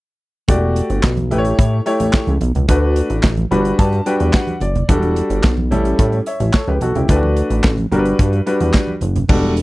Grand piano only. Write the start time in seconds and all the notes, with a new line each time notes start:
0.48 A3 F#4 G4 D5
1.31 A3 E4 G4 B4
1.38 C#5
1.86 A3 E4 G4 C#5
2.68 A3 D4 F#4 B4
3.51 G3 D4 F#4 B4 B5
3.79 A5
4.06 G3 D4 F#4 B4 G5
4.34 F#5
4.61 D5
4.89 G3 D4 F#4 A4
5.71 G3 C#4 E4 A4
6.27 C#5 E5
6.54 A4 C#5
6.68 G4 B4
6.82 F#4 A4
6.96 E4 G4
7.09 A3 D4 F4 B4
7.16 F#4
7.92 G3 D4 F#4 A#4
7.99 B4
8.46 G3 D4 F#4 B4
9.29 G3 D4 F#4 A4